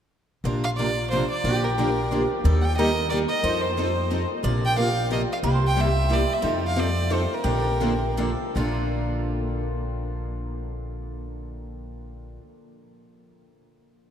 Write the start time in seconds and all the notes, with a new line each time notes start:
0.44 A#1 C3 F3 A#3 D4 F4 A#4
0.64 F5
0.77 C3 F3 A#3 D4 A#4 D5
1.11 C3 F3 A#3 D4 A#4 C5
1.30 D5
1.44 A#1 D3 F3 A#3 D4 G4
1.64 A#4
1.77 D3 F3 A#3 D4 G4 A#4
2.11 D3 F3 A#3 D4 G4
2.44 D#2 D#3 G3 A#3 D#4 G4 A4
2.61 F#5 G5
2.77 D#3 G3 A#3 D#4 G4 A#4 D#5
3.10 D#3 G3 A#3 D#4 G4 D5
3.29 D#5
3.43 F2 F3 C4 D#4 A4 C5
3.61 C5
3.75 F3 C4 D#4 A4 C5
4.10 F3 C4 D#4 A4
4.43 A#1 C3 F3 A#3 F4 A#4 D5
4.65 G5
4.76 C3 F3 A#3 F4 A#4 F5
5.10 C3 F3 A#3 F4 A#4 D#5
5.33 F5
5.43 C2 C3 G3 A#3 E4 G4 C5
5.67 G5
5.76 C3 G3 A#3 E4 G4
5.81 E5
6.09 C3 G3 A#3 E4 G4
6.13 D5
6.33 E5
6.42 F2 F3 C4 D#4 F4 A4
6.67 F5
6.76 F3 C4 D#4 A4 D5
7.09 F3 C4 D#4 A4
7.13 C5
7.34 A#4
7.44 A#1 D3 F3 A#3 D4 G4 A4
7.81 D3 F3 A#3 D4 A4
8.17 D3 F3 A#3 D4 A4
8.55 A#1 A#2 D3 F3 A#3 D4 F4 A4